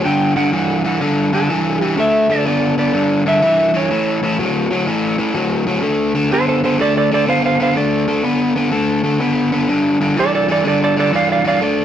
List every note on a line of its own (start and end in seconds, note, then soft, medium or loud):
0.04 0.33 G2 medium
0.04 0.33 D3 medium
0.04 0.36 G5 loud
0.36 0.51 G2 medium
0.36 0.51 D3 medium
0.36 0.52 F#5 medium
0.52 0.81 G2 medium
0.52 0.81 E3 medium
0.52 0.85 F#5 medium
0.84 0.99 G2 medium
0.84 0.99 E3 medium
0.84 1.01 F#5 medium
1.01 1.29 G2 medium
1.01 1.30 D3 medium
1.33 1.47 G2 medium
1.33 1.48 D3 medium
1.33 1.83 A4 medium
1.50 1.78 G2 medium
1.50 1.78 E3 medium
1.81 1.96 G2 medium
1.81 1.96 E3 medium
1.81 2.00 G4 medium
1.97 2.26 D3 medium
1.97 2.26 A3 medium
1.97 2.31 E5 loud
2.30 2.44 D3 medium
2.30 2.44 A3 medium
2.30 2.47 D5 medium
2.45 2.74 D3 medium
2.45 2.74 B3 medium
2.45 2.78 D5 medium
2.78 2.92 D3 medium
2.78 2.92 B3 medium
2.78 3.23 D5 medium
2.93 3.22 G2 medium
2.93 3.23 D3 medium
3.26 3.40 G2 medium
3.26 3.41 D3 medium
3.26 3.76 E5 loud
3.42 3.70 G2 medium
3.42 3.71 E3 medium
3.74 3.88 G2 medium
3.74 3.89 E3 medium
3.74 5.32 C#5 medium
3.91 4.19 A2 medium
3.91 4.19 E3 medium
4.23 4.37 A2 medium
4.23 4.37 E3 medium
4.39 4.67 A2 medium
4.39 4.67 F#3 medium
4.71 4.85 A2 medium
4.71 4.85 F#3 medium
4.87 5.15 A2 medium
4.87 5.16 E3 medium
5.18 5.33 A2 medium
5.18 5.33 E3 medium
5.34 5.63 A2 medium
5.34 5.64 F#3 medium
5.67 5.81 A2 medium
5.67 5.82 F#3 medium
5.83 6.11 D3 medium
5.83 6.12 A3 medium
6.15 6.29 D3 medium
6.15 6.30 A3 medium
6.31 6.60 D3 medium
6.31 6.60 B3 medium
6.31 6.47 A4 medium
6.31 6.48 C5 medium
6.48 6.63 A4 medium
6.48 6.64 C5 medium
6.64 6.78 D3 medium
6.64 6.78 B3 medium
6.64 6.79 A4 medium
6.64 6.80 C5 medium
6.79 7.08 D3 medium
6.79 7.08 A3 medium
6.79 6.95 A4 medium
6.79 6.96 D5 medium
6.97 7.11 A4 medium
6.97 7.12 D5 medium
7.11 7.26 D3 medium
7.11 7.26 A3 medium
7.11 7.28 A4 medium
7.11 7.28 D5 medium
7.27 7.56 D3 medium
7.27 7.56 B3 medium
7.27 7.43 C5 medium
7.27 7.44 F5 medium
7.45 7.60 C5 medium
7.45 7.60 F5 medium
7.60 7.74 D3 medium
7.60 7.74 B3 medium
7.60 7.76 C5 medium
7.60 7.77 F5 medium
7.76 8.05 D3 medium
7.76 8.05 A3 medium
7.76 8.70 D5 medium
8.08 8.22 D3 medium
8.08 8.23 A3 medium
8.24 8.53 D3 medium
8.24 8.53 B3 medium
8.56 8.70 D3 medium
8.56 8.71 B3 medium
8.71 9.01 D3 medium
8.71 9.01 A3 medium
9.04 9.18 D3 medium
9.04 9.19 A3 medium
9.20 9.49 D3 medium
9.20 9.49 B3 medium
9.52 9.67 D3 medium
9.52 9.67 B3 medium
9.68 9.97 G2 medium
9.68 9.98 D3 medium
10.01 10.15 G2 medium
10.01 10.15 D3 medium
10.17 10.45 G2 medium
10.17 10.46 E3 loud
10.17 10.33 A4 medium
10.17 10.34 D5 medium
10.35 10.49 A4 medium
10.35 10.50 D5 medium
10.48 10.63 G2 medium
10.48 10.63 E3 medium
10.48 10.65 A4 medium
10.48 10.66 D5 medium
10.64 10.93 G2 medium
10.64 10.94 D3 medium
10.64 10.81 A4 medium
10.64 10.82 D5 medium
10.84 10.97 A4 medium
10.84 10.98 D5 medium
10.96 11.11 G2 medium
10.96 11.12 D3 medium
10.96 11.13 A4 medium
10.96 11.14 D5 medium
11.13 11.42 G2 medium
11.13 11.42 E3 medium
11.13 11.29 D5 medium
11.13 11.30 F5 medium
11.32 11.46 D5 medium
11.32 11.46 F5 medium
11.44 11.59 G2 medium
11.44 11.59 E3 medium
11.44 11.61 D5 medium
11.48 11.62 F5 medium
11.61 11.85 D3 medium
11.61 11.85 A3 medium
11.61 11.85 D5 medium